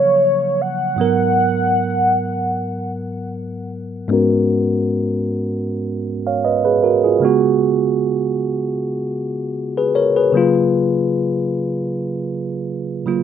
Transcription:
Already playing: tine electric piano C#3 F3 F#3 A#3, soft synth lead C#5
0.61 soft synth lead F#5
0.96 tine electric piano G#2 F#3 B3
1.01 tine electric piano A#4
4.08 tine electric piano G#2 G#3 B3 C#4 F#4
4.13 tine electric piano A#4
6.27 tine electric piano C#5 F5
6.45 tine electric piano B4 D#5
6.65 tine electric piano G#4 B4
6.83 tine electric piano F#4 A#4
7.04 tine electric piano F4 G#4
7.20 tine electric piano C#3 G#3 B3
7.25 tine electric piano F#4
9.77 tine electric piano G#4 B4
9.95 tine electric piano A#4 C#5
10.16 tine electric piano G#4 B4
10.32 tine electric piano C#3 F#3 A#3
10.37 tine electric piano F4
13.06 tine electric piano C#3 F#3 A#3 F4

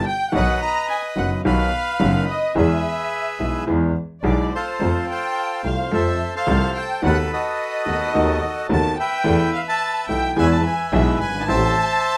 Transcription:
0.06 violin section G5, bandoneon G5
0.32 upright piano B1 B2 D#3 F#3 B3 F#4, double bass B1, bandoneon B4 D#5 F#5, violin section F#5
0.61 violin section A#5, bandoneon A#5
0.89 bandoneon G#5, violin section G#5
1.16 upright piano F#1 F#2 D#3 F#3 B3 F#4, double bass F#1, violin section F#5, bandoneon F#5
1.45 double bass B1, upright piano B1 B2 D#3 F#3 B3 F#4, bandoneon B4 F5, violin section F5
1.99 upright piano F#1 F#2 D#3 F#3 B3 F#4, double bass F#1
2.28 violin section D#5, bandoneon D#5
2.55 upright piano E2 E3 G#3 B3 G#4, double bass E2, bandoneon G#4 B4 E5, violin section E5
3.40 double bass B1, upright piano B1 B2 E3 G#3 B3 G#4
3.67 double bass E2, upright piano E2 E3 G#3 B3 G#4
4.23 double bass B1, upright piano B1 B2 E3 G#3 B3 G#4, violin section D5, bandoneon D5
4.51 bandoneon A4 C5, violin section C5
4.56 bandoneon F4
4.80 double bass F2, upright piano F2 F3 A3 C4 A4
5.08 bandoneon C5 G5, violin section G5
5.64 double bass C2, upright piano C2 C3 F3 A3 C4 A4, violin section F5, bandoneon F5
5.91 upright piano F2 F3 A3 C4 A4, double bass F2, bandoneon A4 C5 E5, violin section E5
6.36 bandoneon A4 C5 F5, violin section F5
6.46 upright piano C2 C3 F3 A3 C4 A4, double bass C2
6.77 violin section G5, bandoneon G5
7.02 upright piano D#2 D#3 A3 B3 F#4, double bass D#2, bandoneon B4 F#5, violin section F#5
7.06 bandoneon A4
7.31 bandoneon F#4 A4 D#5, violin section D#5
7.86 upright piano D#2 D#3 A3 B3 F#4, double bass D#2
8.14 double bass D#2, upright piano D#2 D#3 A3 B3 F#4
8.69 double bass D#2, upright piano D#2 D#3 A3 B3 F#4, violin section A5, bandoneon A5
8.99 bandoneon B4 E5 G5, violin section G5
9.24 upright piano E2 E3 A3 B3 A4, double bass E2
9.54 violin section F5, bandoneon F5
9.67 bandoneon E5 A5, violin section A5
10.08 double bass B1, upright piano B1 B2 E3 A3 B3 A4, violin section G5, bandoneon G5
10.36 upright piano E2 E3 G#3 B3 G#4, double bass E2, bandoneon B4 E5 G#5, violin section G#5
10.51 violin section A5, bandoneon A5
10.65 violin section G#5, bandoneon G#5
10.92 upright piano B1 B2 E3 G#3 B3 G#4, double bass B1, violin section E5, bandoneon E5
11.19 double bass G1, violin section G#5, bandoneon G#5
11.28 upright piano F#1
11.35 upright piano G1
11.41 upright piano G#1
11.47 double bass A1, upright piano A1 A2 E3 A3 C4 G4, bandoneon C5 E5 A5, violin section A5

